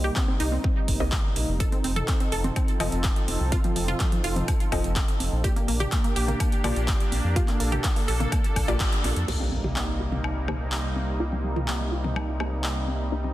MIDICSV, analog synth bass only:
0, 0, Header, 1, 2, 480
1, 0, Start_track
1, 0, Tempo, 480000
1, 1602, Time_signature, 4, 2, 24, 8
1, 13335, End_track
2, 0, Start_track
2, 0, Title_t, "Analog synth bass"
2, 0, Program_c, 0, 38
2, 0, Note_on_c, 0, 36, 96
2, 101, Note_off_c, 0, 36, 0
2, 402, Note_on_c, 0, 36, 94
2, 582, Note_off_c, 0, 36, 0
2, 882, Note_on_c, 0, 31, 98
2, 972, Note_off_c, 0, 31, 0
2, 1003, Note_on_c, 0, 36, 96
2, 1182, Note_off_c, 0, 36, 0
2, 1362, Note_on_c, 0, 34, 85
2, 1453, Note_off_c, 0, 34, 0
2, 1483, Note_on_c, 0, 29, 99
2, 1662, Note_off_c, 0, 29, 0
2, 1841, Note_on_c, 0, 29, 94
2, 2021, Note_off_c, 0, 29, 0
2, 2321, Note_on_c, 0, 29, 90
2, 2501, Note_off_c, 0, 29, 0
2, 2802, Note_on_c, 0, 29, 92
2, 2892, Note_off_c, 0, 29, 0
2, 2923, Note_on_c, 0, 29, 100
2, 3102, Note_off_c, 0, 29, 0
2, 3281, Note_on_c, 0, 29, 86
2, 3372, Note_off_c, 0, 29, 0
2, 3403, Note_on_c, 0, 36, 100
2, 3582, Note_off_c, 0, 36, 0
2, 3761, Note_on_c, 0, 29, 90
2, 3941, Note_off_c, 0, 29, 0
2, 4241, Note_on_c, 0, 29, 92
2, 4421, Note_off_c, 0, 29, 0
2, 4721, Note_on_c, 0, 29, 99
2, 4812, Note_off_c, 0, 29, 0
2, 4843, Note_on_c, 0, 29, 100
2, 5022, Note_off_c, 0, 29, 0
2, 5202, Note_on_c, 0, 29, 84
2, 5293, Note_off_c, 0, 29, 0
2, 5322, Note_on_c, 0, 34, 100
2, 5501, Note_off_c, 0, 34, 0
2, 5681, Note_on_c, 0, 34, 94
2, 5861, Note_off_c, 0, 34, 0
2, 6160, Note_on_c, 0, 34, 91
2, 6341, Note_off_c, 0, 34, 0
2, 6642, Note_on_c, 0, 34, 97
2, 6732, Note_off_c, 0, 34, 0
2, 6761, Note_on_c, 0, 34, 104
2, 6941, Note_off_c, 0, 34, 0
2, 7122, Note_on_c, 0, 34, 82
2, 7212, Note_off_c, 0, 34, 0
2, 7242, Note_on_c, 0, 41, 100
2, 7421, Note_off_c, 0, 41, 0
2, 7601, Note_on_c, 0, 34, 94
2, 7781, Note_off_c, 0, 34, 0
2, 8081, Note_on_c, 0, 34, 96
2, 8261, Note_off_c, 0, 34, 0
2, 8562, Note_on_c, 0, 34, 102
2, 8652, Note_off_c, 0, 34, 0
2, 8683, Note_on_c, 0, 34, 102
2, 8862, Note_off_c, 0, 34, 0
2, 9042, Note_on_c, 0, 34, 96
2, 9132, Note_off_c, 0, 34, 0
2, 9162, Note_on_c, 0, 41, 92
2, 9251, Note_off_c, 0, 41, 0
2, 9282, Note_on_c, 0, 36, 84
2, 13335, Note_off_c, 0, 36, 0
2, 13335, End_track
0, 0, End_of_file